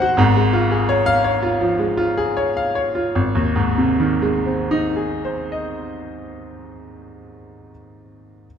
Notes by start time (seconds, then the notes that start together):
Already playing: D#3 G#3 F#4 G#4 C5 F#5
0.02 F#4
0.17 G#1 G#2
0.37 G#3
0.53 F4
0.71 G#4
0.89 C#5
1.06 F5
1.24 C#5
1.43 F4
1.61 F3
1.79 G#3
1.97 F4
2.17 G#4
2.37 C#5
2.57 F5
2.75 C#5
2.95 F4
3.15 G#1
3.35 D#2
3.56 G#2
3.78 C3
4.00 D#3
4.22 G#3
4.46 C4
4.71 D#4
4.96 G#4
5.25 C5
5.52 D#5